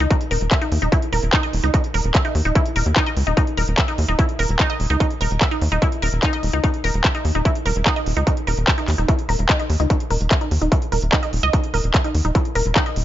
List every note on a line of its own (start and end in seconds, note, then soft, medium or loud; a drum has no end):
0.00 0.07 C#2 medium
0.00 0.05 D#4 medium
0.11 0.15 D#4 medium
0.11 kick loud
0.11 closed hi-hat medium
0.21 closed hi-hat medium
0.31 0.38 D#1 medium
0.31 0.35 A#4 medium
0.31 open hi-hat loud
0.41 0.48 D#1 medium
0.41 closed hi-hat medium
0.51 0.54 E5 medium
0.51 kick loud
0.51 clap loud
0.51 closed hi-hat medium
0.62 0.66 D#4 medium
0.62 closed hi-hat soft
0.72 0.79 D#2 loud
0.72 open hi-hat medium
0.82 0.89 D#1 medium
0.82 0.86 D#4 medium
0.82 closed hi-hat medium
0.92 0.97 E4 medium
0.92 kick loud
0.92 closed hi-hat medium
1.02 closed hi-hat soft
1.13 1.19 D#1 loud
1.13 1.17 A#4 medium
1.13 open hi-hat loud
1.23 1.30 D#1 medium
1.23 closed hi-hat medium
1.33 1.40 D#4 loud
1.33 kick loud
1.33 clap loud
1.33 closed hi-hat medium
1.43 1.50 D#5 medium
1.43 closed hi-hat soft
1.53 1.60 D#1 medium
1.53 open hi-hat medium
1.64 1.70 C#2 medium
1.64 1.68 D#4 medium
1.64 closed hi-hat medium
1.74 1.78 D#4 medium
1.74 kick loud
1.74 closed hi-hat medium
1.84 closed hi-hat medium
1.94 2.01 D#1 loud
1.94 1.99 A#4 medium
1.94 open hi-hat loud
2.04 2.11 D#1 medium
2.04 closed hi-hat medium
2.15 2.17 E5 medium
2.15 kick loud
2.15 clap loud
2.15 closed hi-hat medium
2.25 2.29 D#4 medium
2.25 closed hi-hat soft
2.35 2.42 D#2 loud
2.35 open hi-hat medium
2.45 2.52 D#1 medium
2.45 2.50 D#4 medium
2.45 closed hi-hat medium
2.55 2.60 E4 medium
2.55 kick loud
2.55 closed hi-hat medium
2.66 closed hi-hat soft
2.76 2.83 D#1 loud
2.76 2.80 A#4 medium
2.76 open hi-hat loud
2.86 2.93 D#2 medium
2.86 closed hi-hat soft
2.96 3.03 D#4 loud
2.96 kick loud
2.96 clap loud
2.96 closed hi-hat medium
3.06 3.13 D#5 medium
3.06 closed hi-hat soft
3.17 3.23 C#2 medium
3.17 open hi-hat medium
3.27 3.34 D#1 medium
3.27 3.31 D#4 medium
3.27 closed hi-hat soft
3.37 3.41 D#4 medium
3.37 kick loud
3.37 closed hi-hat medium
3.47 closed hi-hat soft
3.57 3.64 D#1 loud
3.57 3.62 A#4 medium
3.57 open hi-hat loud
3.68 3.75 D#1 medium
3.68 closed hi-hat soft
3.78 3.80 E5 medium
3.78 kick loud
3.78 clap loud
3.78 closed hi-hat medium
3.88 3.92 D#4 medium
3.88 closed hi-hat soft
3.98 4.05 D#2 medium
3.98 open hi-hat medium
4.08 4.15 D#1 medium
4.08 4.13 D#4 medium
4.08 closed hi-hat medium
4.19 4.23 E4 medium
4.19 kick loud
4.19 closed hi-hat medium
4.29 closed hi-hat medium
4.39 4.46 D#1 loud
4.39 4.43 A#4 medium
4.39 open hi-hat loud
4.49 4.56 D#1 medium
4.49 closed hi-hat soft
4.59 4.66 D#4 loud
4.59 kick loud
4.59 clap loud
4.59 closed hi-hat medium
4.70 4.76 D#5 medium
4.70 closed hi-hat soft
4.80 4.87 D#1 medium
4.80 open hi-hat medium
4.90 4.97 C#2 medium
4.90 4.94 D#4 medium
4.90 closed hi-hat medium
5.00 5.05 D#4 medium
5.00 kick loud
5.00 closed hi-hat medium
5.11 closed hi-hat medium
5.21 5.28 D#1 loud
5.21 5.25 A#4 medium
5.21 open hi-hat loud
5.31 5.38 D#1 medium
5.31 closed hi-hat medium
5.41 5.44 E5 medium
5.41 kick loud
5.41 clap loud
5.41 closed hi-hat medium
5.51 5.56 D#4 medium
5.51 closed hi-hat soft
5.62 5.68 D#2 loud
5.62 open hi-hat medium
5.72 5.79 D#1 medium
5.72 5.76 D#4 medium
5.72 closed hi-hat medium
5.82 5.86 E4 medium
5.82 kick loud
5.82 closed hi-hat medium
5.92 closed hi-hat medium
6.02 6.09 D#1 loud
6.02 6.07 A#4 medium
6.02 open hi-hat loud
6.13 6.19 D#1 medium
6.13 closed hi-hat medium
6.23 6.29 D#4 loud
6.23 kick loud
6.23 clap loud
6.23 closed hi-hat medium
6.33 6.40 D#5 medium
6.33 closed hi-hat medium
6.43 6.50 D#1 medium
6.43 open hi-hat medium
6.53 6.60 C#2 medium
6.53 6.58 D#4 medium
6.53 closed hi-hat medium
6.64 6.68 D#4 medium
6.64 kick loud
6.64 closed hi-hat medium
6.74 closed hi-hat medium
6.84 6.91 D#1 loud
6.84 6.88 A#4 medium
6.84 open hi-hat loud
6.94 7.01 D#1 medium
6.94 closed hi-hat medium
7.04 7.07 E5 medium
7.04 kick loud
7.04 clap loud
7.04 closed hi-hat loud
7.15 7.19 D#4 medium
7.15 closed hi-hat medium
7.25 7.32 D#2 loud
7.25 open hi-hat medium
7.35 7.42 D#1 medium
7.35 7.39 D#4 medium
7.35 closed hi-hat medium
7.45 7.50 E4 medium
7.45 kick loud
7.45 closed hi-hat loud
7.55 closed hi-hat medium
7.66 7.72 D#1 loud
7.66 7.70 A#4 medium
7.66 open hi-hat loud
7.76 7.83 D#1 medium
7.76 closed hi-hat medium
7.86 7.93 D#4 loud
7.86 kick loud
7.86 clap loud
7.86 closed hi-hat medium
7.96 8.03 D#5 medium
7.96 closed hi-hat medium
8.06 8.13 D#1 medium
8.06 open hi-hat medium
8.17 8.23 C#2 medium
8.17 8.21 D#4 medium
8.17 closed hi-hat medium
8.27 8.31 D#4 medium
8.27 kick loud
8.27 closed hi-hat loud
8.37 closed hi-hat medium
8.47 8.54 D#1 medium
8.47 8.52 A#4 medium
8.47 open hi-hat loud
8.57 8.64 D#1 medium
8.57 closed hi-hat medium
8.68 8.70 E5 medium
8.68 kick loud
8.68 clap loud
8.68 closed hi-hat loud
8.78 8.82 D#4 medium
8.78 closed hi-hat medium
8.88 8.95 D#2 medium
8.88 clap soft
8.88 open hi-hat medium
8.98 9.05 D#1 medium
8.98 9.03 D#4 medium
8.98 closed hi-hat medium
9.08 9.13 E4 medium
9.08 kick loud
9.08 closed hi-hat loud
9.19 closed hi-hat medium
9.29 9.36 D#1 medium
9.29 9.33 A#4 medium
9.29 open hi-hat loud
9.39 9.46 D#1 medium
9.39 closed hi-hat medium
9.49 9.56 D#4 loud
9.49 kick loud
9.49 clap loud
9.49 closed hi-hat loud
9.59 9.66 D#5 medium
9.59 closed hi-hat medium
9.70 9.77 D#2 medium
9.70 open hi-hat medium
9.80 9.87 C#2 medium
9.80 9.84 D#4 medium
9.80 closed hi-hat medium
9.90 9.94 D#4 medium
9.90 kick loud
9.90 closed hi-hat loud
10.00 closed hi-hat medium
10.11 10.17 D#1 loud
10.11 10.15 A#4 medium
10.11 open hi-hat loud
10.21 10.28 D#1 medium
10.21 closed hi-hat medium
10.31 10.34 E5 medium
10.31 kick loud
10.31 clap loud
10.31 closed hi-hat loud
10.41 10.46 D#4 medium
10.41 closed hi-hat medium
10.51 10.58 D#2 loud
10.51 open hi-hat medium
10.62 10.68 D#1 medium
10.62 10.66 D#4 medium
10.62 closed hi-hat medium
10.72 10.76 E4 medium
10.72 kick loud
10.72 closed hi-hat loud
10.82 closed hi-hat medium
10.92 10.99 D#1 loud
10.92 10.97 A#4 medium
10.92 open hi-hat loud
11.02 11.09 D#1 medium
11.02 closed hi-hat medium
11.13 11.19 D#4 loud
11.13 kick loud
11.13 clap loud
11.13 closed hi-hat loud
11.23 11.29 D#5 medium
11.23 closed hi-hat medium
11.33 11.40 D#1 medium
11.33 open hi-hat medium
11.43 11.50 C#2 medium
11.43 11.46 D#5 loud
11.43 closed hi-hat medium
11.53 11.58 D#4 medium
11.53 kick loud
11.53 closed hi-hat medium
11.64 closed hi-hat medium
11.74 11.81 D#1 loud
11.74 11.78 A#4 medium
11.74 open hi-hat loud
11.84 11.91 D#1 medium
11.84 closed hi-hat medium
11.94 11.97 E5 medium
11.94 kick loud
11.94 clap loud
11.94 closed hi-hat medium
12.04 12.09 D#4 medium
12.04 closed hi-hat medium
12.15 12.21 D#2 loud
12.15 open hi-hat loud
12.25 12.32 D#1 medium
12.25 12.29 D#4 medium
12.25 closed hi-hat medium
12.35 12.39 E4 medium
12.35 kick loud
12.35 closed hi-hat medium
12.45 closed hi-hat medium
12.55 12.62 D#1 loud
12.55 12.60 A#4 medium
12.55 open hi-hat loud
12.66 12.72 D#1 medium
12.66 closed hi-hat medium
12.76 12.82 D#4 loud
12.76 kick loud
12.76 clap loud
12.76 closed hi-hat medium
12.86 12.93 D#5 medium
12.86 closed hi-hat medium
12.96 13.03 D#1 medium
12.96 open hi-hat loud